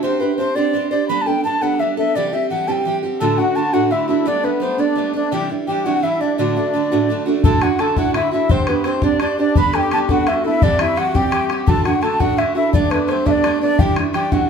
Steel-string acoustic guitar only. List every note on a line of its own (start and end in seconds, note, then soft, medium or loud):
0.03 0.21 C4 medium
0.03 0.21 D4 medium
0.03 0.20 G4 medium
0.03 0.19 C5 medium
0.20 0.38 D4 soft
0.20 0.39 G4 soft
0.20 0.38 C5 medium
0.38 0.56 C4 medium
0.38 0.56 D4 medium
0.38 0.55 G4 medium
0.38 0.55 C5 medium
0.56 0.72 C4 medium
0.56 0.73 D4 medium
0.56 0.74 G4 medium
0.56 0.74 C5 medium
0.73 0.91 C4 medium
0.73 0.92 D4 medium
0.73 0.91 G4 medium
0.73 0.90 C5 medium
0.91 1.09 D4 soft
0.91 1.10 G4 medium
0.91 1.09 C5 medium
1.09 1.27 G3 medium
1.09 1.27 B3 medium
1.09 1.27 D4 medium
1.09 1.25 A4 medium
1.26 1.44 B3 soft
1.26 1.44 D4 soft
1.26 1.44 A4 medium
1.44 1.62 G3 medium
1.44 1.62 B3 medium
1.44 1.61 D4 medium
1.44 1.60 A4 medium
1.61 1.78 G3 medium
1.61 1.79 B3 medium
1.61 1.80 D4 medium
1.61 1.79 A4 medium
1.79 1.97 G3 medium
1.79 1.98 B3 medium
1.79 1.98 D4 medium
1.79 1.96 A4 medium
1.97 2.16 B3 soft
1.97 2.16 D4 medium
1.97 2.15 A4 medium
2.15 2.33 C3 medium
2.15 2.33 E3 medium
2.15 2.33 G3 medium
2.15 2.33 C4 medium
2.15 2.32 G4 medium
2.33 2.50 G3 soft
2.33 2.51 C4 soft
2.33 2.50 G4 medium
2.50 2.68 E3 medium
2.50 2.68 G3 medium
2.50 2.67 C4 medium
2.50 2.66 G4 medium
2.68 2.86 C3 medium
2.68 2.84 E3 soft
2.68 2.85 G3 medium
2.68 2.85 C4 medium
2.68 2.85 G4 medium
2.85 3.03 E3 medium
2.85 3.04 G3 medium
2.85 3.03 C4 medium
2.85 3.01 G4 medium
3.03 3.21 G3 soft
3.03 3.21 C4 soft
3.03 3.20 G4 medium
3.20 3.38 D2 medium
3.20 3.38 A2 medium
3.20 3.38 D3 medium
3.20 3.39 A3 medium
3.20 3.38 D4 medium
3.20 3.36 F#4 medium
3.38 3.54 D3 soft
3.38 3.55 A3 soft
3.38 3.56 D4 soft
3.38 3.56 F#4 soft
3.55 3.73 D3 medium
3.55 3.73 A3 medium
3.55 3.72 D4 medium
3.55 3.72 F#4 medium
3.73 3.92 D2 medium
3.73 3.92 A2 medium
3.73 3.89 D3 medium
3.73 3.91 A3 medium
3.73 3.91 D4 medium
3.73 3.91 F#4 medium
3.91 4.09 D3 medium
3.91 4.09 A3 medium
3.91 4.08 D4 medium
3.91 4.06 F#4 medium
4.08 4.25 D3 soft
4.08 4.25 A3 soft
4.08 4.26 D4 medium
4.08 4.26 F#4 soft
4.26 4.44 G3 medium
4.26 4.44 A3 medium
4.26 4.43 B3 medium
4.26 4.42 D4 medium
4.43 4.60 A3 soft
4.43 4.61 B3 soft
4.43 4.61 D4 medium
4.60 4.78 G3 medium
4.60 4.78 A3 medium
4.60 4.78 B3 medium
4.60 4.77 D4 medium
4.78 4.94 G3 medium
4.78 4.96 A3 soft
4.78 4.97 B3 medium
4.78 4.96 D4 medium
4.95 5.14 G3 medium
4.95 5.15 A3 soft
4.95 5.14 B3 medium
4.95 5.12 D4 medium
5.13 5.32 A3 soft
5.13 5.33 B3 soft
5.13 5.32 D4 medium
5.32 5.50 C3 medium
5.32 5.50 E3 medium
5.32 5.50 G3 medium
5.32 5.50 D4 medium
5.32 5.48 E4 medium
5.49 5.67 G3 soft
5.49 5.68 D4 soft
5.49 5.67 E4 medium
5.67 5.85 E3 soft
5.67 5.85 G3 medium
5.67 5.85 D4 medium
5.67 5.84 E4 medium
5.85 6.04 C3 soft
5.85 6.01 E3 medium
5.85 6.03 G3 medium
5.85 6.03 D4 medium
5.85 6.03 E4 medium
6.03 6.20 E3 soft
6.03 6.21 G3 medium
6.03 6.21 D4 medium
6.03 6.20 E4 medium
6.21 6.39 G3 soft
6.21 6.39 D4 soft
6.21 6.38 E4 medium
6.38 6.56 D2 medium
6.38 6.56 A2 medium
6.38 6.56 D3 medium
6.38 6.56 A3 medium
6.38 6.56 D4 medium
6.38 6.55 F#4 medium
6.56 6.72 D3 soft
6.56 6.74 A3 soft
6.56 6.74 D4 medium
6.56 6.74 F#4 soft
6.74 6.91 D3 medium
6.74 6.91 A3 medium
6.74 6.91 D4 medium
6.74 6.90 F#4 medium
6.91 7.10 D2 soft
6.91 7.10 A2 medium
6.91 7.08 D3 medium
6.91 7.09 A3 medium
6.91 7.09 D4 medium
6.91 7.09 F#4 medium
7.09 7.27 D3 soft
7.09 7.27 A3 medium
7.09 7.26 D4 medium
7.09 7.24 F#4 medium
7.26 7.44 D3 soft
7.26 7.45 A3 medium
7.26 7.44 D4 medium
7.26 7.44 F#4 medium
7.44 7.62 D2 medium
7.44 7.62 A2 medium
7.44 7.62 D3 medium
7.44 7.62 D4 medium
7.44 7.61 E4 medium
7.44 7.60 F#4 medium
7.61 7.77 D3 soft
7.61 7.79 D4 soft
7.61 7.80 E4 soft
7.61 7.79 F#4 medium
7.78 7.97 D3 medium
7.78 7.97 D4 medium
7.78 7.96 E4 medium
7.78 7.96 F#4 medium
7.97 8.16 D2 soft
7.97 8.15 A2 medium
7.97 8.13 D3 soft
7.97 8.14 D4 medium
7.97 8.15 E4 medium
7.97 8.15 F#4 medium
8.14 8.32 D3 medium
8.14 8.32 D4 medium
8.14 8.32 E4 medium
8.14 8.30 F#4 medium
8.31 8.49 D3 medium
8.31 8.49 D4 soft
8.31 8.50 E4 soft
8.31 8.50 F#4 medium
8.49 8.67 C4 medium
8.49 8.68 D4 medium
8.49 8.68 G4 medium
8.49 8.66 C5 medium
8.67 8.84 D4 soft
8.67 8.85 G4 soft
8.67 8.85 C5 medium
8.84 9.02 C4 medium
8.84 9.02 D4 medium
8.84 9.02 G4 medium
8.84 9.01 C5 medium
9.02 9.18 C4 soft
9.02 9.19 D4 medium
9.02 9.20 G4 medium
9.02 9.20 C5 medium
9.20 9.38 C4 medium
9.20 9.38 D4 medium
9.20 9.38 G4 medium
9.20 9.36 C5 medium
9.37 9.56 D4 soft
9.37 9.56 G4 medium
9.37 9.55 C5 medium
9.55 9.73 G3 medium
9.55 9.74 B3 medium
9.55 9.74 D4 medium
9.55 9.72 A4 medium
9.73 9.91 B3 soft
9.73 9.92 D4 medium
9.73 9.91 A4 medium
9.91 10.09 G3 medium
9.91 10.09 B3 medium
9.91 10.09 D4 medium
9.91 10.08 A4 medium
10.09 10.25 G3 soft
10.09 10.26 B3 medium
10.09 10.27 D4 medium
10.09 10.27 A4 medium
10.27 10.44 G3 medium
10.27 10.45 B3 medium
10.27 10.45 D4 medium
10.27 10.43 A4 medium
10.44 10.63 B3 soft
10.44 10.63 D4 medium
10.44 10.62 A4 soft
10.62 10.79 C3 medium
10.62 10.80 E3 medium
10.62 10.80 G3 medium
10.62 10.79 C4 medium
10.62 10.78 G4 medium
10.79 10.96 G3 medium
10.79 10.97 C4 soft
10.79 10.97 G4 medium
10.96 11.14 E3 medium
10.96 11.14 G3 medium
10.96 11.14 C4 medium
10.96 11.13 G4 medium
11.14 11.33 C3 soft
11.14 11.30 E3 medium
11.14 11.31 G3 medium
11.14 11.32 C4 medium
11.14 11.32 G4 medium
11.31 11.49 E3 medium
11.31 11.50 G3 medium
11.31 11.50 C4 medium
11.31 11.48 G4 medium
11.49 11.68 G3 soft
11.49 11.68 C4 medium
11.49 11.67 G4 medium
11.66 11.85 D2 medium
11.66 11.85 A2 medium
11.66 11.85 D3 medium
11.66 11.85 A3 medium
11.66 11.84 D4 medium
11.66 11.83 F#4 medium
11.84 12.00 D3 soft
11.84 12.01 A3 soft
11.84 12.02 D4 medium
11.84 12.02 F#4 medium
12.01 12.20 D3 medium
12.01 12.19 A3 medium
12.01 12.19 D4 medium
12.01 12.18 F#4 medium
12.20 12.39 D2 soft
12.20 12.39 A2 soft
12.20 12.36 D3 medium
12.20 12.37 A3 medium
12.20 12.38 D4 medium
12.20 12.38 F#4 medium
12.37 12.55 D3 medium
12.37 12.56 A3 medium
12.37 12.55 D4 medium
12.37 12.54 F#4 medium
12.55 12.73 D3 soft
12.55 12.73 A3 soft
12.55 12.74 D4 medium
12.55 12.73 F#4 medium
12.73 12.91 G3 medium
12.73 12.91 A3 medium
12.73 12.91 B3 medium
12.73 12.89 D4 medium
12.90 13.08 A3 medium
12.90 13.09 B3 soft
12.90 13.08 D4 medium
13.08 13.26 G3 medium
13.08 13.26 A3 medium
13.08 13.25 B3 medium
13.08 13.24 D4 medium
13.26 13.42 G3 medium
13.26 13.43 A3 medium
13.26 13.44 B3 medium
13.26 13.44 D4 medium
13.43 13.61 G3 soft
13.43 13.62 A3 medium
13.43 13.62 B3 medium
13.43 13.60 D4 medium
13.61 13.80 A3 soft
13.61 13.80 B3 soft
13.61 13.79 D4 medium
13.79 13.97 C3 medium
13.79 13.97 E3 medium
13.79 13.98 G3 medium
13.79 13.97 D4 medium
13.79 13.95 E4 medium
13.96 14.14 G3 soft
13.96 14.14 D4 soft
13.96 14.14 E4 medium
14.13 14.32 E3 medium
14.13 14.31 G3 medium
14.13 14.31 D4 medium
14.13 14.30 E4 medium
14.32 14.50 C3 soft
14.32 14.47 E3 medium
14.32 14.49 G3 medium
14.32 14.50 D4 medium
14.32 14.50 E4 medium